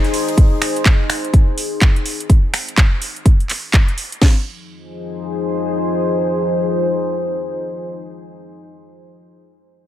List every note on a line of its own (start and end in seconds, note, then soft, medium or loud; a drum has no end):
0.00 2.30 D#4 medium
0.00 2.30 G#4 medium
0.00 2.30 C5 medium
0.04 snare soft
0.04 closed hi-hat soft
0.14 open hi-hat loud
0.14 open hi-hat medium
0.28 closed hi-hat medium
0.28 ride soft
0.38 kick loud
0.38 closed hi-hat medium
0.62 finger snap medium
0.62 open hi-hat loud
0.76 closed hi-hat soft
0.86 kick loud
0.86 clap loud
0.86 closed hi-hat medium
1.10 finger snap medium
1.10 open hi-hat medium
1.24 closed hi-hat soft
1.34 kick loud
1.34 closed hi-hat medium
1.58 open hi-hat loud
1.82 kick loud
1.82 clap loud
1.82 closed hi-hat medium
1.96 closed hi-hat soft
2.06 open hi-hat medium
2.20 closed hi-hat soft
2.30 kick loud
2.30 closed hi-hat medium
2.54 finger snap medium
2.54 open hi-hat loud
2.68 closed hi-hat soft
2.78 kick loud
2.78 clap loud
2.78 closed hi-hat medium
3.02 open hi-hat medium
3.16 closed hi-hat soft
3.26 kick loud
3.26 closed hi-hat medium
3.40 closed hi-hat soft
3.50 clap soft
3.50 open hi-hat loud
3.74 kick loud
3.74 clap loud
3.74 closed hi-hat medium
3.88 closed hi-hat soft
3.98 open hi-hat medium
4.12 closed hi-hat soft
4.22 8.02 F3 medium
4.22 kick loud
4.22 snare loud
4.22 crash medium
4.30 8.10 D#4 medium
4.38 8.18 G#4 medium
4.44 8.24 C5 medium